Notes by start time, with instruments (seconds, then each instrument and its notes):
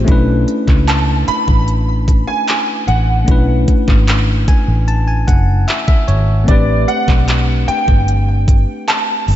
0.05 fingered electric bass B1, tine electric piano A3 C#4 D4, kick, closed hi-hat
0.10 tine electric piano E4 B4
0.48 closed hi-hat
0.68 fingered electric bass C#2, kick, clap
0.88 grand piano A5, clap, closed hi-hat
1.28 grand piano B5, muted fingered electric bass stroke, closed hi-hat
1.48 fingered electric bass A1, kick
1.68 closed hi-hat
2.08 kick, closed hi-hat
2.27 grand piano G#5
2.48 clap, closed hi-hat
2.88 fingered electric bass A1, grand piano F#5, closed hi-hat
3.24 fingered electric bass B1, tine electric piano A3 C#4 D4, kick, closed hi-hat
3.30 tine electric piano E4 B4
3.68 kick, closed hi-hat
3.88 fingered electric bass G#1, kick, clap
4.08 clap, closed hi-hat
4.48 tine electric piano G#5, muted fingered electric bass stroke, kick, closed hi-hat
4.68 fingered electric bass A1
4.88 tine electric piano A5, closed hi-hat
5.08 tine electric piano G#5
5.28 fingered electric bass F#1, tine electric piano F#5, kick, closed hi-hat
5.68 tine electric piano E5, clap, closed hi-hat
5.88 tine electric piano E5, kick
6.08 fingered electric bass G#1, tine electric piano C#5, closed hi-hat
6.44 tine electric piano A3 C4 D4, kick
6.48 fingered electric bass A1, tine electric piano G4 B4, grand piano D5, closed hi-hat
6.88 grand piano F#5, closed hi-hat
7.08 fingered electric bass B1, kick, clap
7.28 clap, closed hi-hat
7.68 grand piano G5, muted fingered electric bass stroke, closed hi-hat
7.88 fingered electric bass G1, kick
8.08 closed hi-hat
8.48 kick, closed hi-hat
8.88 grand piano A5, clap, closed hi-hat
9.28 fingered electric bass G1, open hi-hat